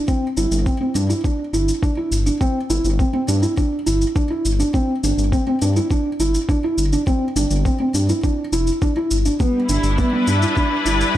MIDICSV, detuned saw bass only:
0, 0, Header, 1, 2, 480
1, 0, Start_track
1, 0, Tempo, 582524
1, 68, Time_signature, 4, 2, 24, 8
1, 9209, End_track
2, 0, Start_track
2, 0, Title_t, "Detuned saw bass"
2, 0, Program_c, 0, 39
2, 305, Note_on_c, 0, 31, 87
2, 381, Note_off_c, 0, 31, 0
2, 423, Note_on_c, 0, 31, 99
2, 574, Note_off_c, 0, 31, 0
2, 783, Note_on_c, 0, 43, 94
2, 934, Note_off_c, 0, 43, 0
2, 1262, Note_on_c, 0, 31, 78
2, 1413, Note_off_c, 0, 31, 0
2, 1741, Note_on_c, 0, 31, 90
2, 1893, Note_off_c, 0, 31, 0
2, 2224, Note_on_c, 0, 31, 87
2, 2300, Note_off_c, 0, 31, 0
2, 2343, Note_on_c, 0, 31, 103
2, 2494, Note_off_c, 0, 31, 0
2, 2706, Note_on_c, 0, 43, 97
2, 2856, Note_off_c, 0, 43, 0
2, 3189, Note_on_c, 0, 31, 75
2, 3337, Note_off_c, 0, 31, 0
2, 3668, Note_on_c, 0, 31, 91
2, 3817, Note_off_c, 0, 31, 0
2, 4149, Note_on_c, 0, 31, 92
2, 4223, Note_off_c, 0, 31, 0
2, 4266, Note_on_c, 0, 31, 99
2, 4415, Note_off_c, 0, 31, 0
2, 4629, Note_on_c, 0, 43, 100
2, 4777, Note_off_c, 0, 43, 0
2, 5106, Note_on_c, 0, 31, 79
2, 5255, Note_off_c, 0, 31, 0
2, 5583, Note_on_c, 0, 31, 95
2, 5734, Note_off_c, 0, 31, 0
2, 6063, Note_on_c, 0, 31, 89
2, 6140, Note_off_c, 0, 31, 0
2, 6184, Note_on_c, 0, 31, 103
2, 6335, Note_off_c, 0, 31, 0
2, 6544, Note_on_c, 0, 43, 97
2, 6695, Note_off_c, 0, 43, 0
2, 7023, Note_on_c, 0, 29, 82
2, 7174, Note_off_c, 0, 29, 0
2, 7506, Note_on_c, 0, 31, 76
2, 7656, Note_off_c, 0, 31, 0
2, 7984, Note_on_c, 0, 31, 96
2, 8060, Note_off_c, 0, 31, 0
2, 8102, Note_on_c, 0, 31, 101
2, 8254, Note_off_c, 0, 31, 0
2, 8466, Note_on_c, 0, 43, 92
2, 8616, Note_off_c, 0, 43, 0
2, 8944, Note_on_c, 0, 31, 80
2, 9095, Note_off_c, 0, 31, 0
2, 9209, End_track
0, 0, End_of_file